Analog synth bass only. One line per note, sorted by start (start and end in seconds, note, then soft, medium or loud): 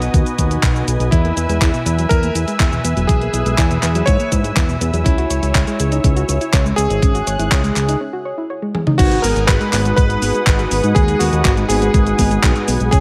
0.14 0.24 D#2 loud
0.39 0.58 D#2 medium
0.63 0.83 B1 medium
0.88 0.98 B1 medium
1.00 1.10 B1 loud
1.12 1.32 E2 loud
1.37 1.47 E2 medium
1.49 1.59 E2 medium
1.61 1.71 E2 loud
1.86 2.06 E2 loud
2.11 2.31 E2 loud
2.35 2.45 E2 medium
2.60 2.80 E2 medium
2.84 2.94 E2 medium
2.97 3.07 E1 loud
3.09 3.29 B1 medium
3.33 3.43 B1 medium
3.46 3.56 B1 medium
3.58 3.78 E2 loud
3.83 4.03 E2 medium
4.07 4.17 G#2 loud
4.32 4.52 G#2 medium
4.57 4.76 E2 medium
4.81 4.91 E2 medium
4.93 5.03 E2 loud
5.06 5.26 C#2 medium
5.30 5.40 C#2 medium
5.43 5.53 C#2 medium
5.55 5.65 C#2 loud
5.80 6.00 C#2 loud
6.04 6.24 C#2 loud
6.29 6.39 C#2 medium
6.53 6.73 C#2 medium
6.78 6.88 C#2 medium
6.90 7.00 G#1 medium
7.02 7.22 G#1 medium
7.27 7.37 G#1 medium
7.39 7.49 G#1 medium
7.52 7.72 C#2 loud
7.76 7.96 C#2 medium
8.99 9.19 G#1 loud
9.24 9.34 G#1 medium
9.36 9.46 G#1 medium
9.48 9.58 G#1 loud
9.73 9.93 G#1 loud
9.98 10.17 G#1 medium
10.22 10.32 G#1 medium
10.47 10.67 G#1 medium
10.71 10.81 G#1 medium
10.84 10.94 G#2 medium
10.96 11.16 D#2 medium
11.20 11.30 D#2 medium
11.33 11.43 D#2 loud
11.45 11.65 G#1 loud
11.69 11.89 G#1 loud
11.94 12.14 G#1 medium
12.19 12.39 G#1 medium
12.43 12.53 B1 loud
12.68 12.78 B1 medium
12.80 12.90 B1 medium
12.93 13.00 C#2 loud